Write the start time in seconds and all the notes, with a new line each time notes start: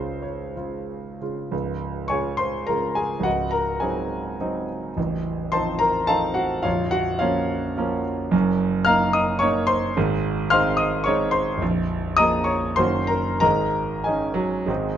Already playing: C#2 C#3 G#3 F4 C5
0.22 C#5
0.57 C#3 G#3 F4
1.21 C#3 G#3 F4
1.52 C#1 C#2
2.08 C#3 G#3 C#5 G#5 C#6
2.12 F4
2.37 C5 C6
2.67 C#3 G#3 F4 A#4 A#5
2.95 G#4 G#5
3.19 C#1 C#2
3.23 F#4 D#5 F#5
3.51 A#4 A#5
3.80 F#3 C4 D#4 G#4 D#5 G#5
4.40 F#3 C4 D#4
4.96 A0 A1
5.52 F3 C4 D#4 C5 A5 C6
5.79 A#4 A#5
6.07 F3 C4 D#4 A4 F5 A5
6.34 F#4 F#5
6.63 A#0 A#1 F4 C#5 F5
6.91 F#4 F#5
7.19 F3 A#3 C#4 F4 C#5 F5
7.78 F3 A#3 C#4
8.31 F#1 F#2
8.85 A#3 D#4 F5 A#5 F6
9.13 D#5 D#6
9.39 A#3 D#4 C#5 C#6
9.67 C5 C6
9.97 G#1 G#2
10.50 G#3 C4 D#4 F5 C6 F6
10.77 D#5 D#6
11.04 G#3 C4 D#4 C#5 C#6
11.31 C5 C6
11.57 A#0
11.62 A#1
12.17 F3 A#3 G#4 D#5 A#5 D#6
12.44 C#5 C#6
12.76 F#1 F#2 D#3 A#3 F#4 C5 C6
13.07 A#4 A#5
13.40 G#1 G#2 A#4 D#5 A#5
14.04 D#3 C#4 D#4 G#4 D#5 G#5
14.34 F#3
14.66 G#1 G#2 D#3 G#3 C4 D#4